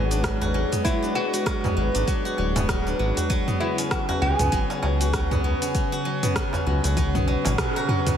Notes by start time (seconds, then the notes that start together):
Already playing: G#1 F#3 G#3 B3 D4 F#4 G#4 B4 D5 F#5
0.11 D4, open hi-hat, cabasa
0.24 F#3, kick, cross-stick, open hi-hat, cabasa
0.41 F#4, darbuka ka, darbuka tek, darbuka dum, cabasa
0.54 F#3
0.72 B3, mid tom, open hi-hat, cabasa
0.85 F#3 E4, kick, open hi-hat, cabasa
1.03 D4, cabasa
1.15 F#3 F#4, darbuka ka
1.33 F#4, open hi-hat, cabasa
1.46 F#3, kick, cross-stick, open hi-hat, cabasa
1.64 B3, mid tom, darbuka tek, darbuka dum, cabasa
1.77 G#1 F#3
1.94 G#1 D4, open hi-hat, cabasa
2.07 F#3, kick, open hi-hat, cabasa
2.25 F#4, cabasa
2.37 D1 F#3, darbuka ka
2.56 B3, mid tom, open hi-hat, darbuka tek, cabasa
2.69 F#3, kick, cross-stick, open hi-hat, cabasa
2.87 D4, cabasa
2.99 G#1 F#3
3.17 F#4, open hi-hat, darbuka dum, cabasa
3.30 C#3 F#3, kick, open hi-hat, cabasa
3.48 B3, mid tom, cabasa
3.60 F#3 C#4 E4
3.78 C#4, open hi-hat, cabasa
3.91 F#3 F#4, kick, cross-stick, open hi-hat, cabasa
4.09 F#4, darbuka tek, darbuka dum, cabasa
4.22 C#2 F#3 G#4
4.39 C#2 B3, mid tom, open hi-hat, darbuka tek, cabasa
4.52 G#1 F#3, kick, open hi-hat, cabasa
4.70 C#4, darbuka tek, cabasa
4.83 C#2 F#3, darbuka tek
5.00 F#4, open hi-hat, cabasa
5.13 F#3, kick, cross-stick, open hi-hat, cabasa
5.31 B3, mid tom, darbuka ka, darbuka tek, darbuka dum, cabasa
5.44 F#3
5.62 C#4, open hi-hat, cabasa
5.75 F#3, kick, open hi-hat, cabasa
5.92 F#4, cabasa
6.05 F#3, darbuka ka
6.23 B3, mid tom, open hi-hat, darbuka ka, cabasa
6.36 F#3, kick, cross-stick, open hi-hat, cabasa
6.53 C#4, darbuka tek, darbuka dum, cabasa
6.67 C#2 F#3
6.84 C#2 F#4, open hi-hat, darbuka tek, cabasa
6.97 F#3, kick, open hi-hat, high tom, cabasa
7.15 B1 B3, mid tom, high tom, cabasa
7.27 F#3, darbuka ka
7.45 G#1 C#4, open hi-hat, mid tom, darbuka tek, cabasa
7.58 F#3, kick, cross-stick, open hi-hat, mid tom, cabasa
7.76 F#4, cabasa
7.89 F#3, mid tom
8.07 B3, mid tom, open hi-hat, darbuka dum, cabasa